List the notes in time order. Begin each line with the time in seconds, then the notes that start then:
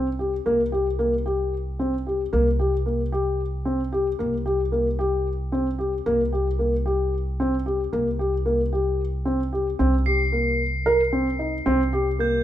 Already playing: C2
0.19 G4
0.46 C2 A#3
0.72 G4
0.99 A#3
1.26 G4
1.79 C4
2.07 G4
2.33 C2 A#3
2.59 G4
2.86 A#3
3.12 G4
3.65 C4
3.93 G4
4.19 C2 A#3
4.46 G4
4.72 A#3
4.99 G4
5.52 C4
5.79 G4
6.06 C2 A#3
6.33 G4
6.59 A#3
6.86 G4
7.40 C4
7.66 G4
7.93 C2 A#3
8.19 G4
8.46 A#3
8.73 G4
9.25 C4
9.53 G4
9.79 C2 C4
10.06 G4 C7
10.32 A#3
10.86 A#4
11.13 C4
11.39 D#4
11.66 C2 C4
11.93 G4
12.19 A#3 G6